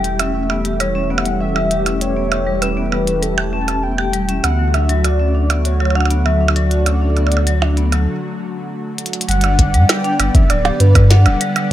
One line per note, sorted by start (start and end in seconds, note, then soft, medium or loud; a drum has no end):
0.00 4.41 E1 medium
0.00 4.40 E3 medium
0.00 4.40 G3 medium
0.00 4.40 A3 medium
0.00 4.40 G4 medium
0.00 6.82 E5 medium
0.00 0.21 G5 loud
0.04 0.16 G4 medium
0.04 closed hi-hat soft
0.19 0.31 C#4 loud
0.19 0.82 E5 loud
0.19 closed hi-hat medium
0.19 percussion blips medium
0.35 0.49 C#4 medium
0.50 0.62 B3 medium
0.50 percussion blips soft
0.65 0.77 G4 medium
0.65 closed hi-hat soft
0.80 0.92 G3 medium
0.80 1.12 C#5 medium
0.80 closed hi-hat medium
0.80 percussion blips soft
0.95 1.10 C#4 medium
1.10 1.25 B3 medium
1.10 1.40 F#5 loud
1.18 percussion blips medium
1.25 1.40 G3 medium
1.25 closed hi-hat soft
1.40 1.55 C#4 medium
1.40 2.03 E5 loud
1.56 1.68 G3 medium
1.56 percussion blips soft
1.71 1.83 G4 medium
1.71 closed hi-hat medium
1.86 1.98 C#4 loud
1.86 closed hi-hat soft
1.86 percussion blips soft
2.01 2.16 C#4 medium
2.01 2.63 C#5 loud
2.01 closed hi-hat medium
2.16 2.28 B3 medium
2.32 2.44 G4 medium
2.32 closed hi-hat soft
2.32 percussion blips medium
2.47 2.59 G3 medium
2.62 2.76 C#4 medium
2.62 3.24 B4 loud
2.62 closed hi-hat medium
2.62 percussion blips soft
2.77 2.92 B3 medium
2.92 3.07 G3 medium
2.92 percussion blips soft
3.07 3.22 C#4 medium
3.07 closed hi-hat soft
3.22 3.34 G3 medium
3.22 3.54 A4 loud
3.22 closed hi-hat medium
3.38 3.50 G4 medium
3.38 percussion blips medium
3.53 3.65 C#4 medium
3.53 3.85 A5 loud
3.68 3.82 C#4 medium
3.68 closed hi-hat soft
3.68 percussion blips soft
3.83 3.95 B3 medium
3.83 4.43 G5 loud
3.98 4.10 G4 medium
3.98 percussion blips soft
4.13 4.26 G3 loud
4.13 closed hi-hat medium
4.29 4.43 C#4 medium
4.29 closed hi-hat soft
4.44 8.07 D2 medium
4.44 9.25 D3 medium
4.44 9.25 F#3 medium
4.44 9.25 A3 medium
4.44 4.58 B3 medium
4.44 9.25 F#4 medium
4.44 4.75 F#5 loud
4.44 closed hi-hat medium
4.44 percussion blips medium
4.59 4.73 F#3 medium
4.74 4.89 D4 medium
4.74 5.06 E5 loud
4.74 closed hi-hat soft
4.74 percussion blips soft
4.89 5.01 F#3 loud
4.89 closed hi-hat soft
5.04 5.16 F#4 medium
5.04 5.67 D5 loud
5.04 closed hi-hat medium
5.04 percussion blips medium
5.20 5.32 C#4 loud
5.35 5.49 D4 medium
5.50 5.62 B3 medium
5.50 closed hi-hat soft
5.50 percussion blips medium
5.65 5.77 F#4 medium
5.65 5.97 C#5 medium
5.65 closed hi-hat medium
5.80 5.92 F#3 medium
5.80 percussion blips soft
5.85 percussion blips soft
5.90 percussion blips soft
5.95 6.10 D4 medium
5.95 6.27 F#5 loud
5.95 percussion blips soft
6.00 percussion blips soft
6.05 percussion blips soft
6.10 6.25 B3 medium
6.10 closed hi-hat soft
6.26 6.40 F#3 medium
6.26 6.57 E5 loud
6.26 percussion blips soft
6.41 6.55 D4 medium
6.48 percussion blips medium
6.56 6.68 F#3 medium
6.56 8.07 D5 loud
6.56 closed hi-hat medium
6.71 6.83 F#4 medium
6.71 closed hi-hat soft
6.86 6.98 C#4 medium
6.86 closed hi-hat medium
6.86 percussion blips medium
7.01 7.16 D4 medium
7.16 7.28 B3 medium
7.16 closed hi-hat soft
7.16 percussion blips soft
7.27 percussion blips soft
7.32 7.44 F#4 medium
7.32 closed hi-hat soft
7.37 percussion blips soft
7.47 7.59 F#3 medium
7.47 closed hi-hat medium
7.62 7.76 D4 medium
7.62 percussion blips medium
7.77 7.92 B3 loud
7.77 closed hi-hat soft
7.92 8.07 F#3 medium
7.92 closed hi-hat soft
7.92 percussion blips medium
8.98 closed hi-hat medium
9.06 closed hi-hat medium
9.13 closed hi-hat medium
9.21 closed hi-hat medium
9.29 9.76 G1 loud
9.29 11.73 D3 medium
9.29 9.36 G3 medium
9.29 11.73 B3 medium
9.29 11.69 D5 medium
9.29 9.91 F#5 loud
9.29 closed hi-hat medium
9.31 closed hi-hat medium
9.41 9.56 D4 medium
9.41 closed hi-hat medium
9.44 closed hi-hat soft
9.44 percussion blips soft
9.59 9.73 G3 medium
9.59 kick medium
9.59 closed hi-hat medium
9.74 9.85 G2 loud
9.74 9.86 G3 loud
9.74 closed hi-hat medium
9.89 10.01 G3 loud
9.89 10.36 G5 loud
9.89 snare loud
9.89 closed hi-hat medium
9.89 percussion blips medium
10.04 10.12 D4 loud
10.04 closed hi-hat soft
10.20 10.30 G1 medium
10.20 10.27 G3 loud
10.20 closed hi-hat loud
10.20 percussion blips medium
10.35 10.42 D4 medium
10.35 10.51 E5 medium
10.35 kick loud
10.35 closed hi-hat medium
10.50 10.71 D1 medium
10.50 10.62 F#3 medium
10.50 10.82 D5 medium
10.50 closed hi-hat medium
10.50 percussion blips medium
10.65 10.77 G4 medium
10.65 closed hi-hat soft
10.65 percussion blips loud
10.80 11.27 G2 loud
10.80 10.92 D4 medium
10.80 11.12 B4 medium
10.80 closed hi-hat loud
10.95 11.03 G3 medium
10.95 kick loud
10.95 closed hi-hat medium
10.95 percussion blips medium
11.10 11.23 D4 medium
11.10 11.70 F#5 loud
11.10 snare loud
11.10 closed hi-hat medium
11.26 11.36 D1 medium
11.26 11.40 G3 medium
11.26 closed hi-hat soft
11.26 percussion blips medium
11.41 11.53 G3 loud
11.41 closed hi-hat loud
11.56 11.68 G3 loud
11.56 closed hi-hat medium
11.56 percussion blips medium